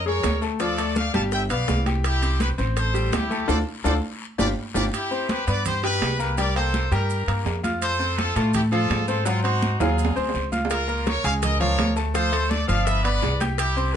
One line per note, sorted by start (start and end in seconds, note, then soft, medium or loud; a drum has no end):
0.00 0.20 F2 medium
0.05 0.35 G#3 medium
0.05 0.36 G#4 medium
0.05 0.40 A#4 medium
0.05 0.40 C#5 loud
0.05 high bongo soft
0.05 high conga soft
0.23 1.08 D2 medium
0.23 high bongo medium
0.23 low bongo medium
0.23 high conga medium
0.23 high timbale medium
0.23 low timbale medium
0.23 short guiro medium
0.23 maracas medium
0.42 0.57 A3 medium
0.42 0.57 A4 medium
0.42 short guiro medium
0.42 maracas soft
0.60 0.75 F3 medium
0.60 0.75 F4 medium
0.60 0.94 A4 medium
0.60 0.94 D5 loud
0.60 high bongo medium
0.60 high conga soft
0.60 high timbale medium
0.60 long guiro medium
0.60 maracas medium
0.78 1.08 A3 medium
0.78 1.08 A4 medium
0.78 high bongo soft
0.78 high conga soft
0.78 high timbale medium
0.78 maracas medium
0.96 1.13 D5 medium
0.96 1.13 F5 loud
0.96 high bongo medium
0.96 high conga medium
0.96 low timbale medium
0.96 short guiro medium
0.96 maracas medium
1.14 1.48 G1 medium
1.14 1.44 G3 medium
1.14 1.44 G4 medium
1.14 1.23 F5 medium
1.14 1.22 A5 medium
1.14 high bongo soft
1.14 high conga medium
1.14 high timbale medium
1.14 short guiro medium
1.14 maracas soft
1.32 1.41 E5 medium
1.32 1.41 G5 loud
1.32 high bongo medium
1.32 high conga soft
1.32 long guiro medium
1.32 maracas medium
1.50 1.67 B1 medium
1.50 1.80 B3 medium
1.50 1.80 B4 medium
1.50 1.84 D5 medium
1.50 1.84 F5 loud
1.50 high bongo soft
1.50 high conga soft
1.50 high timbale medium
1.50 maracas medium
1.68 2.53 C2 medium
1.68 high bongo medium
1.68 low bongo medium
1.68 high conga medium
1.68 low timbale medium
1.68 short guiro medium
1.68 maracas medium
1.86 2.16 G4 medium
1.86 2.16 G5 medium
1.86 high conga medium
1.86 high timbale medium
1.86 short guiro medium
1.86 maracas soft
2.04 2.39 E4 medium
2.04 2.38 G4 medium
2.04 high bongo medium
2.04 high conga soft
2.04 high timbale medium
2.04 long guiro medium
2.04 maracas medium
2.22 2.52 C4 medium
2.22 2.52 C5 medium
2.22 high bongo soft
2.22 high conga soft
2.22 high timbale medium
2.22 maracas medium
2.40 2.49 G4 medium
2.40 2.49 B4 medium
2.40 high bongo medium
2.40 high conga loud
2.40 high timbale medium
2.40 low timbale medium
2.40 short guiro medium
2.40 maracas medium
2.58 3.09 A1 loud
2.58 2.88 C4 medium
2.58 2.88 C5 medium
2.58 high bongo soft
2.58 high conga soft
2.58 short guiro medium
2.58 maracas soft
2.76 3.11 A4 medium
2.76 3.11 C5 loud
2.76 high bongo medium
2.76 high conga soft
2.76 high timbale medium
2.76 long guiro medium
2.76 maracas medium
2.94 3.24 G3 medium
2.94 3.24 G4 medium
2.94 high bongo soft
2.94 high conga soft
2.94 maracas medium
3.12 3.46 D2 medium
3.12 3.47 E4 medium
3.12 3.47 G4 medium
3.12 high bongo medium
3.12 low bongo medium
3.12 high conga medium
3.12 high timbale medium
3.12 low timbale medium
3.12 short guiro medium
3.12 maracas medium
3.30 3.45 A3 medium
3.30 3.45 A4 medium
3.30 high conga medium
3.30 short guiro medium
3.30 maracas soft
3.48 3.62 D2 loud
3.48 3.60 D4 medium
3.48 3.60 F4 medium
3.48 3.60 A4 medium
3.48 3.57 A4 medium
3.48 3.57 C5 medium
3.48 3.57 D5 medium
3.48 high bongo medium
3.48 high conga medium
3.48 high timbale medium
3.48 long guiro medium
3.48 maracas medium
3.84 3.98 D2 medium
3.84 3.96 D4 loud
3.84 3.96 F4 loud
3.84 3.96 A4 medium
3.84 3.94 A4 medium
3.84 3.93 C5 medium
3.84 3.94 D5 medium
3.84 high bongo loud
3.84 high conga medium
3.84 high timbale medium
3.84 long guiro loud
3.84 maracas medium
4.38 4.52 G1 medium
4.38 4.50 D4 medium
4.38 4.50 F4 medium
4.38 4.50 G4 medium
4.38 4.47 G4 medium
4.38 4.47 B4 medium
4.38 4.47 D5 medium
4.38 high bongo loud
4.38 high conga medium
4.38 high timbale medium
4.38 long guiro medium
4.38 maracas loud
4.74 4.88 G1 medium
4.74 4.86 D4 medium
4.74 4.86 F4 medium
4.74 4.86 G4 medium
4.74 4.84 G4 medium
4.74 4.84 B4 medium
4.74 4.84 D5 medium
4.74 high bongo medium
4.74 high conga medium
4.74 high timbale medium
4.74 long guiro loud
4.74 maracas medium
4.93 5.27 E4 medium
4.93 5.27 G4 medium
4.93 high conga soft
4.93 high timbale medium
4.93 long guiro medium
4.93 maracas medium
5.11 5.41 C4 medium
5.11 5.41 C5 medium
5.11 5.41 C6 medium
5.11 high conga soft
5.11 maracas soft
5.29 5.48 G4 medium
5.29 5.47 B4 loud
5.29 high conga medium
5.29 high timbale medium
5.29 low timbale medium
5.29 short guiro medium
5.29 maracas soft
5.47 5.98 G2 medium
5.47 5.77 B3 medium
5.47 5.77 B4 medium
5.47 5.64 B4 medium
5.47 5.64 D5 loud
5.47 5.77 B5 medium
5.47 high conga soft
5.47 high timbale medium
5.47 short guiro medium
5.47 maracas medium
5.66 5.82 G4 medium
5.66 5.82 C5 loud
5.66 high conga soft
5.66 low conga medium
5.66 high timbale medium
5.66 long guiro medium
5.66 maracas medium
5.83 6.13 G3 medium
5.83 6.13 G4 medium
5.83 6.17 G4 medium
5.83 6.17 B4 loud
5.83 6.13 G5 medium
5.83 high conga soft
5.83 high timbale medium
5.83 maracas soft
6.01 6.86 C2 medium
6.01 high conga medium
6.01 high timbale medium
6.01 low timbale medium
6.01 short guiro medium
6.01 maracas soft
6.19 6.34 A#3 medium
6.19 6.37 G4 medium
6.19 6.34 A#4 medium
6.19 6.37 B4 medium
6.19 6.34 A#5 medium
6.19 short guiro medium
6.19 maracas medium
6.38 6.52 G3 medium
6.38 6.53 G4 medium
6.38 6.55 A#4 medium
6.38 6.55 D5 loud
6.38 6.53 G5 medium
6.38 high conga soft
6.38 high timbale medium
6.38 long guiro medium
6.38 maracas medium
6.56 6.85 A#3 medium
6.56 6.90 A4 medium
6.56 6.85 C5 medium
6.56 6.90 C5 medium
6.56 6.86 G5 medium
6.56 high conga soft
6.56 high timbale medium
6.56 maracas soft
6.74 high conga medium
6.74 low timbale medium
6.74 short guiro medium
6.74 maracas soft
6.91 7.25 G2 loud
6.91 7.21 G3 medium
6.91 7.21 G4 medium
6.91 7.42 G4 medium
6.91 7.42 A#4 medium
6.91 7.22 G5 medium
6.91 high conga soft
6.91 high timbale medium
6.91 short guiro medium
6.91 maracas medium
7.10 high conga soft
7.10 long guiro medium
7.10 maracas medium
7.27 7.44 G2 medium
7.27 7.57 A#3 medium
7.27 7.57 A#4 medium
7.27 7.58 A#5 medium
7.27 high conga soft
7.27 high timbale medium
7.27 maracas soft
7.45 8.30 F2 medium
7.45 high conga soft
7.45 low timbale medium
7.45 short guiro medium
7.45 maracas soft
7.63 7.93 F4 medium
7.63 7.93 F5 medium
7.63 7.94 F6 medium
7.63 high conga medium
7.63 high timbale medium
7.63 short guiro medium
7.63 maracas medium
7.82 8.16 A4 medium
7.82 8.16 C5 loud
7.82 high conga soft
7.82 high timbale medium
7.82 maracas medium
7.99 8.29 C4 medium
7.99 8.29 C5 medium
7.99 8.30 C6 medium
7.99 high conga soft
7.99 maracas soft
8.18 8.35 F4 medium
8.18 8.36 A4 medium
8.18 high conga medium
8.18 high timbale medium
8.18 low timbale medium
8.18 short guiro medium
8.18 maracas soft
8.36 8.86 A2 loud
8.36 8.66 A3 medium
8.36 8.55 D4 medium
8.36 8.54 F4 medium
8.36 8.66 A4 medium
8.36 8.66 A5 medium
8.36 high conga soft
8.36 high timbale medium
8.36 short guiro medium
8.36 maracas medium
8.53 8.63 E4 medium
8.53 8.62 G4 medium
8.53 high conga soft
8.53 low conga medium
8.53 high timbale medium
8.53 long guiro medium
8.53 maracas medium
8.71 9.02 F3 medium
8.71 9.02 F4 medium
8.71 9.06 F4 medium
8.71 9.05 A4 loud
8.71 9.02 F5 medium
8.71 high conga soft
8.71 high timbale medium
8.71 maracas soft
8.90 9.74 G#2 medium
8.90 high conga medium
8.90 high timbale medium
8.90 low timbale medium
8.90 short guiro medium
8.90 maracas soft
9.07 9.23 C4 medium
9.07 9.24 F4 medium
9.07 9.24 A4 medium
9.07 9.23 C5 medium
9.07 9.23 C6 medium
9.07 short guiro medium
9.07 maracas medium
9.25 9.41 F#3 medium
9.25 9.45 C4 medium
9.25 9.44 F4 medium
9.25 9.41 F#4 medium
9.25 9.41 F#5 medium
9.25 high conga soft
9.25 high timbale medium
9.25 long guiro medium
9.25 maracas medium
9.44 9.73 C4 medium
9.44 9.78 D#4 medium
9.44 9.77 F#4 medium
9.44 9.74 C5 medium
9.44 9.74 C6 medium
9.44 high conga soft
9.44 high timbale medium
9.44 maracas soft
9.62 high conga loud
9.62 low timbale medium
9.62 short guiro medium
9.62 maracas soft
9.80 10.14 D#2 loud
9.80 10.10 F#3 medium
9.80 10.35 F4 medium
9.80 10.34 G#4 medium
9.80 10.10 G#4 medium
9.80 10.10 F5 medium
9.80 high timbale medium
9.80 short guiro medium
9.80 maracas medium
9.98 high conga soft
9.98 long guiro medium
9.98 maracas medium
10.05 low timbale medium
10.16 10.33 D2 medium
10.16 10.46 C4 medium
10.16 10.46 C5 medium
10.16 10.46 C6 medium
10.16 high conga soft
10.16 maracas soft
10.29 low timbale medium
10.34 11.19 C#2 medium
10.34 high conga soft
10.34 short guiro medium
10.34 maracas soft
10.52 10.82 F4 medium
10.52 10.82 F5 medium
10.52 10.82 F6 medium
10.52 high conga medium
10.52 short guiro medium
10.52 maracas medium
10.65 low timbale medium
10.70 11.05 F4 medium
10.70 11.04 A#4 loud
10.70 high bongo medium
10.70 high conga soft
10.70 high timbale loud
10.70 long guiro medium
10.70 maracas medium
10.88 11.18 A#3 medium
10.88 11.18 A#4 medium
10.88 11.18 A#5 medium
10.88 high conga soft
10.88 maracas soft
11.06 11.25 A#4 medium
11.06 11.25 C#5 loud
11.06 high bongo medium
11.06 high conga loud
11.06 high timbale medium
11.06 low timbale medium
11.06 short guiro medium
11.06 maracas soft
11.24 11.75 C#2 loud
11.24 11.54 G#3 medium
11.24 11.54 G#4 medium
11.24 11.34 C#5 medium
11.24 11.33 F5 loud
11.24 11.54 G#5 medium
11.24 high bongo soft
11.24 high conga soft
11.24 high timbale medium
11.24 short guiro medium
11.24 maracas medium
11.42 11.60 A#4 medium
11.42 11.59 D#5 loud
11.42 high bongo medium
11.42 high conga soft
11.42 low conga medium
11.42 high timbale medium
11.42 long guiro medium
11.42 maracas medium
11.60 11.90 F3 medium
11.60 11.90 F4 medium
11.60 11.94 A#4 medium
11.60 11.94 C#5 loud
11.60 11.90 F5 medium
11.60 high bongo soft
11.60 high conga soft
11.60 low conga medium
11.60 high timbale medium
11.60 maracas soft
11.78 12.63 D2 medium
11.78 high bongo soft
11.78 low bongo medium
11.78 high conga medium
11.78 high timbale medium
11.78 low timbale medium
11.78 short guiro medium
11.78 maracas soft
11.96 12.11 A3 medium
11.96 12.11 A4 medium
11.96 12.12 A5 medium
11.96 high bongo soft
11.96 short guiro medium
11.96 maracas medium
12.14 12.29 F3 medium
12.14 12.29 F4 medium
12.14 12.49 A4 medium
12.14 12.48 C5 loud
12.14 12.29 F5 medium
12.14 high bongo medium
12.14 high conga soft
12.14 high timbale medium
12.14 long guiro medium
12.14 maracas medium
12.32 12.62 A3 medium
12.32 12.62 A4 medium
12.32 12.62 A5 medium
12.32 high conga soft
12.32 high timbale medium
12.32 maracas soft
12.50 12.69 A4 medium
12.50 12.68 D5 loud
12.50 high bongo medium
12.50 high conga medium
12.50 low timbale medium
12.50 short guiro medium
12.50 maracas soft
12.68 13.19 G1 loud
12.68 12.98 F3 medium
12.68 12.98 F4 medium
12.68 12.86 D5 medium
12.68 12.85 F5 medium
12.68 12.98 F5 medium
12.68 high bongo soft
12.68 high conga soft
12.68 high timbale medium
12.68 short guiro medium
12.68 maracas medium
12.85 13.04 B4 medium
12.85 13.04 E5 loud
12.85 high bongo medium
12.85 high conga soft
12.85 long guiro medium
12.85 maracas medium
13.03 13.34 B3 medium
13.03 13.34 B4 medium
13.03 13.38 B4 medium
13.03 13.37 D5 loud
13.03 13.34 B5 medium
13.03 high bongo soft
13.03 high conga soft
13.03 high timbale medium
13.03 maracas soft
13.22 13.96 C2 medium
13.22 high bongo soft
13.22 low bongo medium
13.22 high conga soft
13.22 low timbale medium
13.22 short guiro medium
13.22 maracas soft
13.40 13.70 G4 medium
13.40 13.70 G5 medium
13.40 13.70 G6 medium
13.40 high bongo soft
13.40 high conga medium
13.40 high timbale medium
13.40 short guiro medium
13.40 maracas medium
13.57 13.92 E4 medium
13.57 13.91 G4 loud
13.57 high bongo medium
13.57 high timbale loud
13.57 long guiro medium
13.57 maracas medium
13.76 13.96 C4 medium
13.76 13.96 C5 medium
13.76 13.96 C6 medium
13.76 high conga soft
13.76 maracas soft
13.93 13.96 B4 loud